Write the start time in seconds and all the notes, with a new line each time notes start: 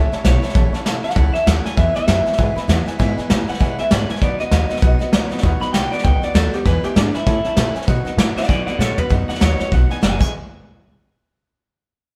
Already playing: C#2 A2 E3 A3 C#4 E4 E5
0.12 A3 C#4 E4 C#5 E5 A5, muted upright bass stroke, snare
0.24 B1 E3 A3 C#4 E4 C#5 E5 A5, snare, hi-hat pedal
0.42 A3 C#4 E4 C#5 E5 A5, snare
0.49 snare
0.54 A1 A2 E3 A3 C#4 E4 C#5 E5 A5, kick, snare
0.72 A3 C#4 E4 C#5 E5 A5, muted upright bass stroke, snare
0.84 B1 E3 A3 C#4 E4 C#5 E5 A5, snare, hi-hat pedal
1.03 A3 C#4 E4 C#5 E5 F#5 A5, muted upright bass stroke, snare
1.10 snare
1.15 C#2 A2 E3 A3 C#4 E4 C#5 E5 A5, kick, snare
1.33 A3 C#4 E4 C#5 E5 A5, muted upright bass stroke, snare
1.46 D#2 E3 A3 C#4 E4 C#5 F#5 A5, snare, hi-hat pedal
1.64 A3 C#4 E4 C#5 E5 G#5 A5, snare
1.77 E2 B2 E3 G#3 B3 E4 B4 E5 G#5, kick, snare
1.95 E3 G#3 B3 E4 B4 E5 G#5, muted upright bass stroke, snare
2.07 F#2 E3 G#3 B3 E4 B4 E5 G#5, snare, hi-hat pedal
2.25 E3 G#3 B3 E4 B4 E5 G#5, muted upright bass stroke, snare
2.33 snare
2.38 E2 G#2 B2 E3 G#3 B3 E4 B4 E5 G#5, kick, snare
2.55 E3 G#3 B3 E4 B4 E5 B5, muted upright bass stroke, snare
2.68 E2 E3 G#3 B3 E4 B4 E5 F#5, snare, hi-hat pedal
2.86 E3 G#3 B3 E4 B4 E5 G#5, muted upright bass stroke, snare
2.99 E2 G#2 B2 E3 G#3 B3 E4 B4 E5 G#5, kick, snare
3.17 E3 G#3 B3 E4 B4 E5 G#5, muted upright bass stroke, snare
3.29 A2 E3 G#3 B3 E4 B4 E5 G#5, snare, hi-hat pedal
3.47 E3 G#3 B3 E4 B4 E5 F#5 G#5, muted upright bass stroke, snare
3.54 snare
3.59 E2 B2 E3 G#3 B3 E4 B4 E5 G#5, kick, snare
3.78 E3 G#3 B3 E4 B4 E5 G#5, muted upright bass stroke, snare
3.90 G#2 E3 G#3 B3 E4 B4 F#5 G#5, snare, hi-hat pedal
4.08 E3 G#3 B3 E4 B4 E5 G#5, muted upright bass stroke, snare
4.16 snare
4.21 F#2 B2 F#3 B3 D#4 F#4 B4 D5 D#5 F#5, kick, snare
4.39 B3 D#4 F#4 B4 D#5 F#5, muted upright bass stroke, snare
4.51 D#2 F#3 B3 D#4 F#4 B4 D#5 F#5, snare, hi-hat pedal
4.69 B3 D#4 F#4 B4 D#5 F#5, snare
4.76 snare
4.82 B1 B2 F#3 B3 D#4 F#4 B4 D#5 F#5, kick, snare
4.99 B3 D#4 F#4 B4 D#5 F#5, snare
5.12 C#2 F#3 B3 D#4 F#4 B4 D#5 F#5, snare, hi-hat pedal
5.30 B3 D#4 F#4 B4 D#5 F#5, muted upright bass stroke, snare
5.38 snare
5.43 D#2 B2 F#3 B3 D#4 F#4 B4 D#5 F#5, kick, snare
5.60 B3 D#4 F#4 B4 D#5 F#5 B5, muted upright bass stroke, snare
5.73 C2 F#3 B3 D#4 F#4 B4 D#5 F#5 G5, snare, hi-hat pedal
5.91 B3 D#4 F#4 B4 D5 D#5 F#5, snare
5.99 snare
6.04 C#2 B2 F#3 B3 D#4 F#4 B4 D#5 F#5 G5, kick, snare
6.22 B3 D#4 F#4 B4 D5 D#5 F#5, snare
6.34 D#2 F#3 B3 D#4 F#4 A4 F#5, snare, hi-hat pedal
6.53 B3 D#4 F#4 G4 B4 D#5 F#5, snare
6.65 E2 B2 E3 G#3 B3 E4 B4 E5 G#5, kick, snare
6.83 E3 G#3 B3 E4 G4 B4 E5 G#5, muted upright bass stroke, snare
6.95 G#2 E3 G#3 B3 D4 E4 B4 E5 G#5, snare, hi-hat pedal
7.14 E3 G#3 B3 E4 B4 E5 G#5, muted upright bass stroke, snare
7.26 A2 E3 A3 C#4 E4 C#5 E5 A5, kick, snare
7.44 A3 C#4 E4 C#5 E5 A5, muted upright bass stroke, snare
7.56 A#2 E3 A3 C#4 E4 C#5 E5 A5, snare, hi-hat pedal
7.74 A3 C#4 E4 C#5 E5 G#5, muted upright bass stroke, snare
7.82 snare
7.87 B2 F#3 B3 D#4 F#4 B4 D#5 F#5, kick, snare
8.04 B3 D#4 F#4 B4 D#5 F#5, muted upright bass stroke, snare
8.17 A2 F#3 B3 D#4 F#4 B4 D#5 F#5, snare, hi-hat pedal
8.34 D#4 F#4 B4 D5 D#5 F#5, muted upright bass stroke, snare
8.38 B3
8.43 snare
8.47 G#2 B2 F#3 B3 D#4 F#4 B4 D5 D#5 F#5 G#5, kick, snare
8.66 B3 D#4 F#4 B4 D5 D#5 F#5, muted upright bass stroke, snare
8.78 A#2 F#3 B3 D#4 A4 B4 C#5 F#5, snare, hi-hat pedal
8.82 F#4
8.97 B3 D#4 F#4 B4 D#5 F#5, muted upright bass stroke, floor tom
9.10 F#2 B2 F#3 B3 D#4 F#4 B4 D#5 F#5, kick, snare
9.27 B3 D#4 F#4 B4 D#5 F#5, muted upright bass stroke, snare
9.35 snare
9.40 D#2 B2 F#3 B3 D#4 F#4 B4 C#5 D#5 F#5, snare, hi-hat pedal
9.58 B3 D#4 F#4 B4 C#5 D#5 F#5, muted upright bass stroke, snare
9.71 B1 F#3 B3 D#4 F#4 B4 D#5 F#5, kick, snare
9.89 B3 D#4 F#4 B4 D#5 F#5 G#5, snare
10.01 F#1 B2 F#3 B3 D#4 F#4 B4 D#5 F#5 G#5, snare, hi-hat pedal
10.19 E2 B2 E3 G#3 B3 G#4 B4 E5 G#5, kick, crash